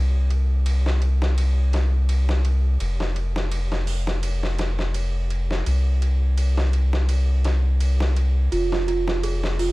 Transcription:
Already playing: sub bass C2
0.30 ride
0.66 ride
0.86 snare
1.02 ride
1.22 snare
1.38 ride
1.73 snare, ride
2.09 ride
2.29 snare
2.45 ride
2.80 sub bass F1, ride
3.00 snare
3.16 ride
3.36 snare
3.52 ride
3.72 snare
3.87 open hi-hat
4.07 snare
4.23 ride
4.43 snare
4.59 snare, ride
4.79 snare
4.94 ride
5.30 ride
5.51 snare
5.66 sub bass C2, ride
6.02 ride
6.38 ride
6.57 snare
6.73 ride
6.93 snare
7.09 ride
7.45 snare, ride
7.80 ride
8.00 snare
8.16 ride
8.52 sub bass F1, celesta F4, ride
8.72 snare
8.87 celesta F4, ride
9.08 snare
9.23 celesta G#4, ride
9.44 snare
9.59 celesta F4, open hi-hat

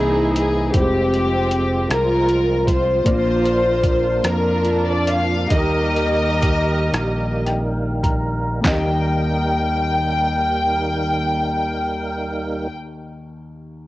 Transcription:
Already playing: fingered electric bass C2, upright piano C3 E3 A#3 G#4 C5, tonewheel organ E3 A#3 C4 G#4, string section D#4 E4 G#4
0.36 string section G#4, closed hi-hat
0.72 fingered electric bass F1, tonewheel organ F3 G#3 C4 F4, upright piano G3 C4 F4 C5, string section G4, kick, closed hi-hat
0.77 upright piano G#3, string section C4
1.13 closed hi-hat
1.51 closed hi-hat
1.90 fingered electric bass C2, string section F4 A#4, cross-stick, closed hi-hat
2.29 closed hi-hat
2.67 string section F4 C5, kick, closed hi-hat
3.04 fingered electric bass A#1, upright piano A#2 A#3 D4 F4 D5, tonewheel organ F3 A#3 D4 A#4, kick, closed hi-hat
3.45 closed hi-hat
3.84 kick, closed hi-hat
4.24 fingered electric bass F2, string section D4 F4 A#4, cross-stick, closed hi-hat
4.65 closed hi-hat
4.89 string section D5
5.07 string section F5, closed hi-hat
5.49 fingered electric bass D#2, upright piano D#3 A#3 D#4 G4 D#5, tonewheel organ G3 A#3 D#4 A#4, kick, closed hi-hat
5.53 string section G4 A#4 D#5
5.96 closed hi-hat
6.42 kick, closed hi-hat
6.93 fingered electric bass A#1, cross-stick, closed hi-hat
7.46 upright piano G5, cross-stick, closed hi-hat
8.03 upright piano A#5, kick, closed hi-hat
8.61 upright piano D#2 A#3 D#4, fingered electric bass D#2, tonewheel organ G3 A#3 D#4 A#4, kick, clap
8.65 upright piano G4 D#5, string section G5, snare

